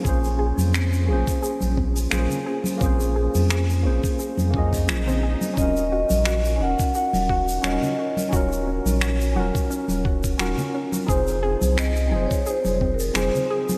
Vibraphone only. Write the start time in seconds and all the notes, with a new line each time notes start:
5.58 D#5
5.93 D#5
6.62 F#5
6.96 F#5
7.66 D#5
8.35 C#5
11.09 C5
12.26 C#5
12.48 C5
12.94 A#4
13.18 C5